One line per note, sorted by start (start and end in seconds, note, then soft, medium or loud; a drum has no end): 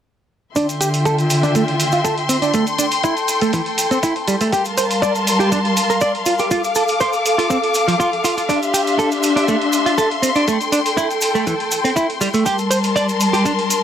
0.56 2.52 D3 medium
0.56 0.66 D4 medium
0.56 2.52 F4 medium
0.56 2.52 E5 medium
0.56 2.53 G5 medium
0.56 4.49 C6 medium
0.56 kick loud
0.56 closed hi-hat soft
0.56 cabasa soft
0.69 closed hi-hat soft
0.69 cabasa soft
0.81 0.87 G4 medium
0.81 closed hi-hat medium
0.81 cabasa medium
0.94 closed hi-hat soft
0.94 cabasa soft
1.05 1.15 A4 medium
1.05 kick loud
1.05 closed hi-hat soft
1.05 cabasa soft
1.18 closed hi-hat soft
1.18 cabasa soft
1.30 closed hi-hat medium
1.30 cabasa medium
1.43 1.52 D4 medium
1.43 closed hi-hat soft
1.43 cabasa soft
1.55 1.62 A3 medium
1.55 kick loud
1.55 closed hi-hat soft
1.55 cabasa soft
1.68 closed hi-hat soft
1.80 closed hi-hat medium
1.80 cabasa medium
1.92 1.99 F4 medium
1.92 closed hi-hat soft
1.92 cabasa soft
2.04 2.14 A4 medium
2.04 kick loud
2.04 closed hi-hat soft
2.04 cabasa soft
2.18 closed hi-hat soft
2.29 2.36 C4 medium
2.29 closed hi-hat medium
2.29 cabasa medium
2.42 2.51 D4 medium
2.42 closed hi-hat soft
2.42 cabasa soft
2.54 2.64 A3 medium
2.54 4.51 A4 medium
2.54 4.51 G5 medium
2.54 kick loud
2.54 closed hi-hat soft
2.54 cabasa medium
2.67 closed hi-hat soft
2.67 cabasa soft
2.79 2.85 D4 medium
2.79 closed hi-hat medium
2.79 cabasa medium
2.91 closed hi-hat soft
2.91 cabasa soft
3.03 3.14 E4 medium
3.03 kick loud
3.03 closed hi-hat soft
3.03 cabasa soft
3.17 closed hi-hat soft
3.17 cabasa soft
3.28 closed hi-hat medium
3.28 cabasa medium
3.41 3.51 A3 medium
3.41 closed hi-hat soft
3.41 cabasa soft
3.53 3.60 E3 medium
3.53 kick loud
3.53 closed hi-hat soft
3.53 cabasa soft
3.66 closed hi-hat soft
3.78 closed hi-hat medium
3.78 cabasa medium
3.91 3.97 C4 medium
3.91 closed hi-hat soft
3.91 cabasa soft
4.03 4.13 E4 medium
4.03 kick loud
4.03 closed hi-hat soft
4.03 cabasa soft
4.16 closed hi-hat soft
4.28 4.34 G3 medium
4.28 closed hi-hat medium
4.28 cabasa medium
4.41 4.50 A3 medium
4.41 closed hi-hat soft
4.41 cabasa soft
4.52 6.49 G3 medium
4.52 4.62 G4 medium
4.52 6.49 A#4 medium
4.52 10.44 F5 medium
4.52 6.49 A5 medium
4.52 6.49 C6 medium
4.52 kick loud
4.52 closed hi-hat soft
4.52 cabasa soft
4.65 closed hi-hat soft
4.65 cabasa soft
4.78 4.84 C5 medium
4.78 closed hi-hat medium
4.78 cabasa medium
4.91 closed hi-hat soft
4.91 cabasa soft
5.02 5.12 D5 medium
5.02 kick loud
5.02 closed hi-hat soft
5.02 cabasa soft
5.15 closed hi-hat soft
5.15 cabasa soft
5.27 closed hi-hat medium
5.27 cabasa medium
5.40 5.49 G4 medium
5.40 closed hi-hat soft
5.40 cabasa soft
5.52 5.59 D4 medium
5.52 kick loud
5.52 closed hi-hat soft
5.52 cabasa soft
5.65 closed hi-hat soft
5.77 closed hi-hat medium
5.77 cabasa medium
5.90 5.96 A#4 medium
5.90 closed hi-hat soft
5.90 cabasa soft
6.01 6.11 D5 medium
6.01 kick loud
6.01 closed hi-hat soft
6.01 cabasa soft
6.15 closed hi-hat soft
6.26 6.33 F4 medium
6.26 closed hi-hat medium
6.26 cabasa medium
6.39 6.48 G4 medium
6.39 closed hi-hat soft
6.39 cabasa soft
6.51 6.61 F4 medium
6.51 8.48 A4 medium
6.51 8.48 D6 medium
6.51 kick loud
6.51 closed hi-hat soft
6.51 cabasa medium
6.64 closed hi-hat soft
6.64 cabasa soft
6.75 6.82 A4 medium
6.75 closed hi-hat medium
6.75 cabasa medium
6.88 closed hi-hat soft
6.88 cabasa soft
7.00 7.10 C5 medium
7.00 kick loud
7.00 closed hi-hat soft
7.00 cabasa soft
7.13 closed hi-hat soft
7.13 cabasa soft
7.26 closed hi-hat medium
7.26 cabasa medium
7.38 7.47 F4 medium
7.38 closed hi-hat soft
7.38 cabasa soft
7.50 7.57 C4 medium
7.50 kick loud
7.50 closed hi-hat soft
7.50 cabasa soft
7.64 closed hi-hat soft
7.74 closed hi-hat medium
7.74 cabasa medium
7.88 7.94 F3 medium
7.88 closed hi-hat soft
7.88 cabasa soft
8.00 8.10 F4 medium
8.00 kick loud
8.00 closed hi-hat soft
8.00 cabasa soft
8.13 closed hi-hat soft
8.24 8.34 F4 medium
8.24 closed hi-hat medium
8.24 cabasa medium
8.37 8.41 F4 medium
8.37 closed hi-hat soft
8.37 cabasa soft
8.49 8.59 D4 medium
8.49 10.46 D4 medium
8.49 10.46 G4 medium
8.49 10.46 E5 medium
8.49 12.42 C6 medium
8.49 kick loud
8.49 closed hi-hat soft
8.49 cabasa soft
8.63 closed hi-hat soft
8.63 cabasa soft
8.74 8.81 G4 medium
8.74 closed hi-hat medium
8.74 cabasa medium
8.87 closed hi-hat soft
8.87 cabasa soft
8.99 9.09 A4 medium
8.99 kick loud
8.99 closed hi-hat soft
8.99 cabasa soft
9.12 closed hi-hat soft
9.12 cabasa soft
9.23 closed hi-hat medium
9.23 cabasa medium
9.36 9.45 D4 medium
9.36 closed hi-hat soft
9.36 cabasa soft
9.48 9.55 A3 medium
9.48 kick loud
9.48 closed hi-hat soft
9.48 cabasa soft
9.62 closed hi-hat soft
9.73 closed hi-hat medium
9.73 cabasa medium
9.86 9.92 F4 medium
9.86 closed hi-hat soft
9.86 cabasa soft
9.98 10.08 A4 medium
9.98 kick loud
9.98 closed hi-hat soft
9.98 cabasa soft
10.11 closed hi-hat soft
10.22 10.29 C4 medium
10.22 closed hi-hat medium
10.22 cabasa medium
10.35 10.45 D4 medium
10.35 closed hi-hat soft
10.35 cabasa soft
10.47 10.57 A3 medium
10.47 12.44 A4 medium
10.47 12.44 G5 medium
10.47 kick loud
10.47 closed hi-hat soft
10.47 cabasa soft
10.61 closed hi-hat soft
10.61 cabasa soft
10.72 10.79 D4 medium
10.72 closed hi-hat medium
10.72 cabasa medium
10.86 closed hi-hat soft
10.86 cabasa soft
10.97 11.07 E4 medium
10.97 kick loud
10.97 closed hi-hat soft
10.97 cabasa soft
11.11 closed hi-hat soft
11.11 cabasa soft
11.21 closed hi-hat medium
11.21 cabasa medium
11.35 11.44 A3 medium
11.35 closed hi-hat soft
11.35 cabasa soft
11.47 11.53 E3 medium
11.47 kick loud
11.47 closed hi-hat soft
11.47 cabasa soft
11.60 closed hi-hat soft
11.71 closed hi-hat medium
11.71 cabasa medium
11.84 11.91 C4 medium
11.84 closed hi-hat soft
11.84 cabasa soft
11.96 12.06 E4 medium
11.96 kick loud
11.96 closed hi-hat soft
11.96 cabasa soft
12.10 closed hi-hat soft
12.21 12.28 G3 medium
12.21 closed hi-hat medium
12.21 cabasa medium
12.34 12.43 A3 medium
12.34 closed hi-hat soft
12.34 cabasa soft
12.46 13.83 G3 medium
12.46 12.56 G4 medium
12.46 13.83 A#4 medium
12.46 13.83 A5 medium
12.46 13.83 C6 medium
12.46 kick loud
12.46 closed hi-hat medium
12.46 cabasa soft
12.59 closed hi-hat soft
12.59 cabasa soft
12.71 12.77 C5 medium
12.71 closed hi-hat medium
12.71 cabasa medium
12.84 closed hi-hat soft
12.84 cabasa soft
12.96 13.06 D5 medium
12.96 kick medium
12.96 closed hi-hat soft
12.96 cabasa soft
13.09 closed hi-hat soft
13.09 cabasa soft
13.20 closed hi-hat medium
13.20 cabasa medium
13.33 13.42 G4 medium
13.33 closed hi-hat soft
13.33 cabasa soft
13.45 13.52 D4 medium
13.45 kick loud
13.45 closed hi-hat soft
13.45 cabasa soft
13.59 closed hi-hat soft
13.70 closed hi-hat medium
13.70 cabasa medium